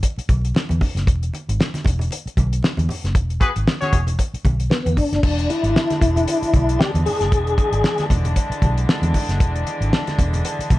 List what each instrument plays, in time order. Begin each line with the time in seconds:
0.03 kick, closed hi-hat, muted conga
0.18 muted fingered electric bass stroke, closed hi-hat
0.29 fingered electric bass B1, kick, closed hi-hat, muted conga, high conga
0.45 closed hi-hat
0.55 snare, muted conga
0.69 fingered electric bass E2, closed hi-hat, high conga
0.81 kick, open hi-hat, muted conga, low conga
0.95 fingered electric bass F#1, snare, closed hi-hat
1.07 fingered electric bass E1, kick, closed hi-hat, muted conga
1.23 closed hi-hat
1.33 closed hi-hat, muted conga
1.49 fingered electric bass G#1, closed hi-hat
1.60 snare, muted conga
1.74 snare, closed hi-hat, high conga
1.84 fingered electric bass E1, kick, closed hi-hat, muted conga, low conga
1.99 closed hi-hat, low conga
2.11 closed hi-hat, muted conga
2.26 muted fingered electric bass stroke, closed hi-hat
2.37 fingered electric bass B1, kick, closed hi-hat, muted conga, high conga
2.53 closed hi-hat
2.63 snare, muted conga
2.77 fingered electric bass E2, closed hi-hat, high conga
2.89 open hi-hat, muted conga, low conga
3.04 fingered electric bass F#1, snare, closed hi-hat
3.15 fingered electric bass E1, kick, closed hi-hat, muted conga
3.30 closed hi-hat
3.40 horn section B3 F#4 G#4 B4, kick, closed hi-hat, muted conga
3.56 fingered electric bass G#1, closed hi-hat
3.67 snare, muted conga
3.81 horn section C#4 F#4 G#4 C#5, snare, closed hi-hat, high conga
3.92 fingered electric bass E1, kick, closed hi-hat, low conga
4.07 closed hi-hat, low conga
4.19 kick, closed hi-hat, muted conga
4.34 muted fingered electric bass stroke, closed hi-hat
4.45 fingered electric bass B1, kick, closed hi-hat, muted conga, high conga
4.60 closed hi-hat
4.70 tonewheel organ B3, snare
4.86 fingered electric bass E2, closed hi-hat, high conga
4.97 tonewheel organ D4, kick, open hi-hat, muted conga, low conga
5.12 fingered electric bass F#1, snare, closed hi-hat
5.23 fingered electric bass E1, string section D3 E3 G#3 D4, kick, crash, muted conga
5.39 closed hi-hat
5.50 tonewheel organ E4, closed hi-hat, muted conga
5.63 fingered electric bass G#1, closed hi-hat
5.76 snare
5.90 snare, closed hi-hat, high conga
6.01 fingered electric bass E1, tonewheel organ E4, kick, closed hi-hat, muted conga, low conga
6.16 closed hi-hat, low conga
6.28 closed hi-hat, muted conga
6.42 muted fingered electric bass stroke, closed hi-hat
6.54 fingered electric bass B1, kick, closed hi-hat, muted conga, high conga
6.69 closed hi-hat
6.79 tonewheel organ G4, snare
6.94 fingered electric bass E2, closed hi-hat, high conga
7.06 tonewheel organ G#4, open hi-hat, muted conga, low conga
7.20 fingered electric bass F#1, snare, closed hi-hat
7.32 fingered electric bass E1, kick, closed hi-hat
7.47 closed hi-hat
7.58 kick, closed hi-hat
7.72 fingered electric bass G#1, closed hi-hat
7.84 snare, muted conga
7.98 snare, closed hi-hat, high conga
8.10 fingered electric bass E1, kick, closed hi-hat, low conga
8.25 closed hi-hat, low conga
8.36 kick, closed hi-hat
8.50 muted fingered electric bass stroke, closed hi-hat
8.62 fingered electric bass B1, kick, closed hi-hat, muted conga, high conga
8.77 closed hi-hat
8.89 snare
9.02 fingered electric bass E2, closed hi-hat, high conga
9.14 kick, open hi-hat, low conga
9.29 fingered electric bass F#1, snare, closed hi-hat
9.40 fingered electric bass E1, kick, closed hi-hat
9.56 closed hi-hat
9.67 closed hi-hat, muted conga
9.81 fingered electric bass G#1, closed hi-hat
9.93 snare, muted conga
10.07 snare, closed hi-hat, high conga
10.18 fingered electric bass E1, kick, closed hi-hat, muted conga, low conga
10.33 closed hi-hat, low conga
10.45 closed hi-hat, muted conga
10.59 muted fingered electric bass stroke, closed hi-hat
10.70 fingered electric bass B1, kick, closed hi-hat, muted conga, high conga